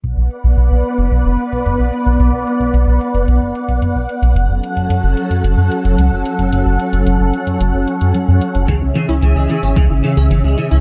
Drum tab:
HH |x-xxx-xxx-xxx-xx|x-xxx-xxx-xxx-xx|x-xxx-xxx-xxx-xx|x-xxx-xxx-xxx-xx|
BD |----------------|----------------|----------------|----------------|

HH |x-xxx-xxx-xxx-xx|
BD |o-------o-------|